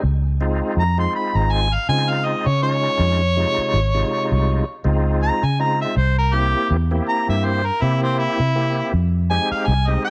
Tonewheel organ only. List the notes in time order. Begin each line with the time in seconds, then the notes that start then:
0.41 G#3 C4 D#4 F4
0.98 G#3 C4 D#4 F4
1.89 G#3 C4 D#4 F4
2.63 G#3 C#4 D#4 F4
3.36 C3 G#3 D#4 F4
3.94 C3 G#3 D#4 F4
4.84 G#3 C4 D#4 F4
5.59 G#3 C4 D#4 F4
6.33 A#3 C4 E4 G4
6.91 A#3 C4 E4 G4
7.82 A#3 C4 E4 G4
8.55 A#3 C4 E4 G4
9.30 G#3 C4 D#4 G4
9.88 G#3 C4 D#4 G4